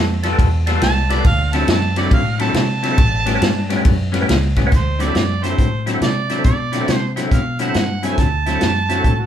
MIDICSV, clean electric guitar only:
0, 0, Header, 1, 2, 480
1, 0, Start_track
1, 0, Tempo, 432900
1, 1389, Time_signature, 4, 2, 24, 8
1, 10270, End_track
2, 0, Start_track
2, 0, Title_t, "Clean electric guitar"
2, 0, Program_c, 0, 27
2, 265, Note_on_c, 0, 69, 79
2, 276, Note_on_c, 0, 65, 82
2, 277, Note_on_c, 0, 59, 71
2, 284, Note_on_c, 0, 55, 65
2, 525, Note_off_c, 0, 69, 0
2, 531, Note_off_c, 0, 59, 0
2, 531, Note_off_c, 0, 65, 0
2, 534, Note_off_c, 0, 55, 0
2, 745, Note_on_c, 0, 69, 96
2, 748, Note_on_c, 0, 65, 83
2, 752, Note_on_c, 0, 59, 88
2, 757, Note_on_c, 0, 55, 79
2, 1005, Note_off_c, 0, 69, 0
2, 1006, Note_off_c, 0, 65, 0
2, 1009, Note_off_c, 0, 59, 0
2, 1011, Note_off_c, 0, 55, 0
2, 1214, Note_on_c, 0, 69, 81
2, 1217, Note_on_c, 0, 65, 74
2, 1220, Note_on_c, 0, 59, 80
2, 1228, Note_on_c, 0, 55, 73
2, 1386, Note_off_c, 0, 69, 0
2, 1387, Note_off_c, 0, 65, 0
2, 1389, Note_off_c, 0, 59, 0
2, 1393, Note_off_c, 0, 55, 0
2, 1706, Note_on_c, 0, 60, 92
2, 1707, Note_on_c, 0, 64, 90
2, 1711, Note_on_c, 0, 54, 84
2, 1715, Note_on_c, 0, 50, 84
2, 1965, Note_off_c, 0, 60, 0
2, 1966, Note_off_c, 0, 64, 0
2, 1968, Note_off_c, 0, 54, 0
2, 1970, Note_off_c, 0, 50, 0
2, 2184, Note_on_c, 0, 60, 78
2, 2186, Note_on_c, 0, 64, 79
2, 2189, Note_on_c, 0, 54, 72
2, 2198, Note_on_c, 0, 50, 71
2, 2444, Note_off_c, 0, 60, 0
2, 2445, Note_off_c, 0, 64, 0
2, 2447, Note_off_c, 0, 54, 0
2, 2451, Note_off_c, 0, 50, 0
2, 2652, Note_on_c, 0, 64, 98
2, 2661, Note_on_c, 0, 54, 90
2, 2662, Note_on_c, 0, 60, 88
2, 2667, Note_on_c, 0, 50, 81
2, 2918, Note_off_c, 0, 64, 0
2, 2922, Note_off_c, 0, 54, 0
2, 2923, Note_off_c, 0, 60, 0
2, 2925, Note_off_c, 0, 50, 0
2, 3136, Note_on_c, 0, 64, 84
2, 3141, Note_on_c, 0, 60, 79
2, 3145, Note_on_c, 0, 50, 65
2, 3147, Note_on_c, 0, 54, 72
2, 3306, Note_off_c, 0, 64, 0
2, 3308, Note_off_c, 0, 60, 0
2, 3311, Note_off_c, 0, 50, 0
2, 3312, Note_off_c, 0, 54, 0
2, 3613, Note_on_c, 0, 59, 95
2, 3613, Note_on_c, 0, 61, 102
2, 3620, Note_on_c, 0, 55, 86
2, 3621, Note_on_c, 0, 45, 80
2, 3878, Note_off_c, 0, 59, 0
2, 3878, Note_off_c, 0, 61, 0
2, 3881, Note_off_c, 0, 55, 0
2, 3882, Note_off_c, 0, 45, 0
2, 4096, Note_on_c, 0, 61, 80
2, 4098, Note_on_c, 0, 59, 73
2, 4102, Note_on_c, 0, 55, 76
2, 4107, Note_on_c, 0, 45, 71
2, 4359, Note_off_c, 0, 61, 0
2, 4360, Note_off_c, 0, 59, 0
2, 4362, Note_off_c, 0, 55, 0
2, 4365, Note_off_c, 0, 45, 0
2, 4568, Note_on_c, 0, 61, 98
2, 4575, Note_on_c, 0, 55, 81
2, 4577, Note_on_c, 0, 59, 91
2, 4583, Note_on_c, 0, 45, 82
2, 4835, Note_off_c, 0, 61, 0
2, 4839, Note_off_c, 0, 55, 0
2, 4840, Note_off_c, 0, 59, 0
2, 4842, Note_off_c, 0, 45, 0
2, 5063, Note_on_c, 0, 59, 78
2, 5067, Note_on_c, 0, 61, 80
2, 5072, Note_on_c, 0, 45, 73
2, 5073, Note_on_c, 0, 55, 70
2, 5229, Note_off_c, 0, 59, 0
2, 5231, Note_off_c, 0, 61, 0
2, 5233, Note_off_c, 0, 45, 0
2, 5234, Note_off_c, 0, 55, 0
2, 5533, Note_on_c, 0, 64, 87
2, 5540, Note_on_c, 0, 60, 77
2, 5548, Note_on_c, 0, 54, 82
2, 5551, Note_on_c, 0, 50, 72
2, 5798, Note_off_c, 0, 64, 0
2, 5801, Note_off_c, 0, 60, 0
2, 5805, Note_off_c, 0, 54, 0
2, 5807, Note_off_c, 0, 50, 0
2, 6017, Note_on_c, 0, 64, 70
2, 6023, Note_on_c, 0, 60, 67
2, 6027, Note_on_c, 0, 50, 63
2, 6029, Note_on_c, 0, 54, 64
2, 6280, Note_off_c, 0, 64, 0
2, 6283, Note_off_c, 0, 60, 0
2, 6285, Note_off_c, 0, 50, 0
2, 6286, Note_off_c, 0, 54, 0
2, 6501, Note_on_c, 0, 64, 90
2, 6509, Note_on_c, 0, 60, 70
2, 6511, Note_on_c, 0, 54, 74
2, 6516, Note_on_c, 0, 50, 66
2, 6761, Note_off_c, 0, 64, 0
2, 6766, Note_off_c, 0, 60, 0
2, 6767, Note_off_c, 0, 54, 0
2, 6769, Note_off_c, 0, 50, 0
2, 6981, Note_on_c, 0, 64, 76
2, 6984, Note_on_c, 0, 60, 67
2, 6988, Note_on_c, 0, 54, 60
2, 6998, Note_on_c, 0, 50, 62
2, 7242, Note_off_c, 0, 64, 0
2, 7244, Note_off_c, 0, 60, 0
2, 7246, Note_off_c, 0, 54, 0
2, 7250, Note_off_c, 0, 50, 0
2, 7452, Note_on_c, 0, 64, 86
2, 7463, Note_on_c, 0, 60, 84
2, 7468, Note_on_c, 0, 54, 77
2, 7473, Note_on_c, 0, 50, 73
2, 7717, Note_off_c, 0, 64, 0
2, 7723, Note_off_c, 0, 60, 0
2, 7725, Note_off_c, 0, 54, 0
2, 7728, Note_off_c, 0, 50, 0
2, 7940, Note_on_c, 0, 64, 80
2, 7944, Note_on_c, 0, 60, 69
2, 7946, Note_on_c, 0, 54, 65
2, 7956, Note_on_c, 0, 50, 63
2, 8202, Note_off_c, 0, 64, 0
2, 8204, Note_off_c, 0, 60, 0
2, 8205, Note_off_c, 0, 54, 0
2, 8209, Note_off_c, 0, 50, 0
2, 8419, Note_on_c, 0, 64, 82
2, 8422, Note_on_c, 0, 60, 79
2, 8424, Note_on_c, 0, 54, 71
2, 8430, Note_on_c, 0, 50, 76
2, 8681, Note_off_c, 0, 64, 0
2, 8683, Note_off_c, 0, 60, 0
2, 8684, Note_off_c, 0, 54, 0
2, 8686, Note_off_c, 0, 50, 0
2, 8901, Note_on_c, 0, 64, 81
2, 8904, Note_on_c, 0, 60, 64
2, 8908, Note_on_c, 0, 54, 62
2, 8913, Note_on_c, 0, 50, 60
2, 9162, Note_off_c, 0, 64, 0
2, 9164, Note_off_c, 0, 60, 0
2, 9166, Note_off_c, 0, 54, 0
2, 9168, Note_off_c, 0, 50, 0
2, 9386, Note_on_c, 0, 64, 89
2, 9393, Note_on_c, 0, 60, 74
2, 9400, Note_on_c, 0, 50, 73
2, 9400, Note_on_c, 0, 54, 80
2, 9645, Note_off_c, 0, 64, 0
2, 9648, Note_off_c, 0, 60, 0
2, 9652, Note_off_c, 0, 50, 0
2, 9652, Note_off_c, 0, 54, 0
2, 9855, Note_on_c, 0, 64, 75
2, 9859, Note_on_c, 0, 60, 67
2, 9864, Note_on_c, 0, 50, 59
2, 9865, Note_on_c, 0, 54, 66
2, 10120, Note_off_c, 0, 64, 0
2, 10121, Note_off_c, 0, 60, 0
2, 10124, Note_off_c, 0, 50, 0
2, 10124, Note_off_c, 0, 54, 0
2, 10270, End_track
0, 0, End_of_file